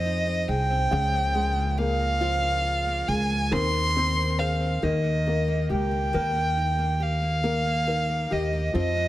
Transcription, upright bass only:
0, 0, Header, 1, 2, 480
1, 0, Start_track
1, 0, Tempo, 869565
1, 506, Time_signature, 6, 3, 24, 8
1, 5013, End_track
2, 0, Start_track
2, 0, Title_t, "Upright bass"
2, 0, Program_c, 0, 32
2, 0, Note_on_c, 0, 41, 107
2, 247, Note_off_c, 0, 41, 0
2, 271, Note_on_c, 0, 36, 88
2, 493, Note_off_c, 0, 36, 0
2, 511, Note_on_c, 0, 37, 109
2, 1682, Note_off_c, 0, 37, 0
2, 1704, Note_on_c, 0, 37, 94
2, 1928, Note_off_c, 0, 37, 0
2, 1944, Note_on_c, 0, 39, 110
2, 2643, Note_off_c, 0, 39, 0
2, 2668, Note_on_c, 0, 39, 88
2, 3126, Note_off_c, 0, 39, 0
2, 3149, Note_on_c, 0, 37, 81
2, 3374, Note_off_c, 0, 37, 0
2, 3392, Note_on_c, 0, 39, 98
2, 4570, Note_off_c, 0, 39, 0
2, 4593, Note_on_c, 0, 39, 87
2, 4817, Note_off_c, 0, 39, 0
2, 4830, Note_on_c, 0, 41, 104
2, 5013, Note_off_c, 0, 41, 0
2, 5013, End_track
0, 0, End_of_file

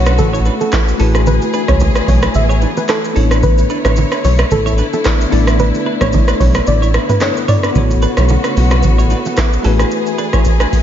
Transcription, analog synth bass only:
0, 0, Header, 1, 2, 480
1, 0, Start_track
1, 0, Tempo, 540541
1, 1126, Time_signature, 4, 2, 24, 8
1, 9614, End_track
2, 0, Start_track
2, 0, Title_t, "Analog synth bass"
2, 0, Program_c, 0, 38
2, 0, Note_on_c, 0, 35, 97
2, 168, Note_on_c, 0, 33, 103
2, 182, Note_off_c, 0, 35, 0
2, 438, Note_off_c, 0, 33, 0
2, 885, Note_on_c, 0, 33, 102
2, 1234, Note_off_c, 0, 33, 0
2, 1497, Note_on_c, 0, 37, 94
2, 1672, Note_off_c, 0, 37, 0
2, 1844, Note_on_c, 0, 35, 87
2, 2019, Note_off_c, 0, 35, 0
2, 2083, Note_on_c, 0, 33, 111
2, 2355, Note_off_c, 0, 33, 0
2, 2805, Note_on_c, 0, 33, 108
2, 3250, Note_off_c, 0, 33, 0
2, 3415, Note_on_c, 0, 33, 95
2, 3590, Note_off_c, 0, 33, 0
2, 3766, Note_on_c, 0, 35, 97
2, 3941, Note_off_c, 0, 35, 0
2, 4008, Note_on_c, 0, 33, 105
2, 4278, Note_off_c, 0, 33, 0
2, 4725, Note_on_c, 0, 33, 105
2, 5074, Note_off_c, 0, 33, 0
2, 5337, Note_on_c, 0, 33, 92
2, 5512, Note_off_c, 0, 33, 0
2, 5684, Note_on_c, 0, 35, 92
2, 5859, Note_off_c, 0, 35, 0
2, 5925, Note_on_c, 0, 33, 105
2, 6196, Note_off_c, 0, 33, 0
2, 6885, Note_on_c, 0, 33, 112
2, 7156, Note_off_c, 0, 33, 0
2, 7257, Note_on_c, 0, 35, 99
2, 7432, Note_off_c, 0, 35, 0
2, 7606, Note_on_c, 0, 35, 97
2, 7846, Note_on_c, 0, 33, 104
2, 7860, Note_off_c, 0, 35, 0
2, 8117, Note_off_c, 0, 33, 0
2, 8566, Note_on_c, 0, 33, 97
2, 8741, Note_off_c, 0, 33, 0
2, 9614, End_track
0, 0, End_of_file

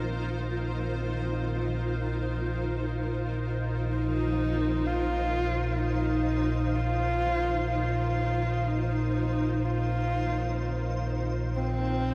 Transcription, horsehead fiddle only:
0, 0, Header, 1, 2, 480
1, 0, Start_track
1, 0, Tempo, 500000
1, 11654, End_track
2, 0, Start_track
2, 0, Title_t, "Horsehead fiddle"
2, 0, Program_c, 0, 110
2, 3767, Note_on_c, 0, 63, 100
2, 4668, Note_on_c, 0, 65, 103
2, 4683, Note_off_c, 0, 63, 0
2, 5577, Note_off_c, 0, 65, 0
2, 5583, Note_on_c, 0, 63, 100
2, 6482, Note_on_c, 0, 65, 101
2, 6497, Note_off_c, 0, 63, 0
2, 7393, Note_off_c, 0, 65, 0
2, 7399, Note_on_c, 0, 65, 91
2, 8322, Note_on_c, 0, 63, 90
2, 8336, Note_off_c, 0, 65, 0
2, 9257, Note_on_c, 0, 65, 89
2, 9272, Note_off_c, 0, 63, 0
2, 10625, Note_off_c, 0, 65, 0
2, 11087, Note_on_c, 0, 60, 106
2, 11654, Note_off_c, 0, 60, 0
2, 11654, End_track
0, 0, End_of_file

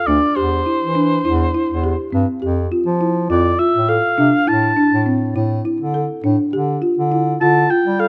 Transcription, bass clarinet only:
0, 0, Header, 1, 2, 480
1, 0, Start_track
1, 0, Key_signature, -1, "minor"
1, 0, Tempo, 587084
1, 296, Time_signature, 7, 3, 24, 8
1, 6606, End_track
2, 0, Start_track
2, 0, Title_t, "Bass clarinet"
2, 0, Program_c, 0, 71
2, 54, Note_on_c, 0, 38, 69
2, 161, Note_off_c, 0, 38, 0
2, 298, Note_on_c, 0, 40, 66
2, 509, Note_off_c, 0, 40, 0
2, 662, Note_on_c, 0, 52, 60
2, 977, Note_off_c, 0, 52, 0
2, 1020, Note_on_c, 0, 40, 84
2, 1230, Note_off_c, 0, 40, 0
2, 1381, Note_on_c, 0, 40, 64
2, 1591, Note_off_c, 0, 40, 0
2, 1740, Note_on_c, 0, 43, 70
2, 1845, Note_off_c, 0, 43, 0
2, 1981, Note_on_c, 0, 41, 70
2, 2191, Note_off_c, 0, 41, 0
2, 2340, Note_on_c, 0, 53, 67
2, 2657, Note_off_c, 0, 53, 0
2, 2697, Note_on_c, 0, 41, 75
2, 2909, Note_off_c, 0, 41, 0
2, 3058, Note_on_c, 0, 45, 61
2, 3269, Note_off_c, 0, 45, 0
2, 3419, Note_on_c, 0, 48, 65
2, 3524, Note_off_c, 0, 48, 0
2, 3661, Note_on_c, 0, 45, 63
2, 3871, Note_off_c, 0, 45, 0
2, 4023, Note_on_c, 0, 45, 67
2, 4338, Note_off_c, 0, 45, 0
2, 4379, Note_on_c, 0, 45, 76
2, 4590, Note_off_c, 0, 45, 0
2, 4743, Note_on_c, 0, 50, 68
2, 4952, Note_off_c, 0, 50, 0
2, 5102, Note_on_c, 0, 45, 70
2, 5206, Note_off_c, 0, 45, 0
2, 5339, Note_on_c, 0, 50, 69
2, 5550, Note_off_c, 0, 50, 0
2, 5702, Note_on_c, 0, 50, 68
2, 6017, Note_off_c, 0, 50, 0
2, 6060, Note_on_c, 0, 50, 79
2, 6271, Note_off_c, 0, 50, 0
2, 6422, Note_on_c, 0, 55, 58
2, 6606, Note_off_c, 0, 55, 0
2, 6606, End_track
0, 0, End_of_file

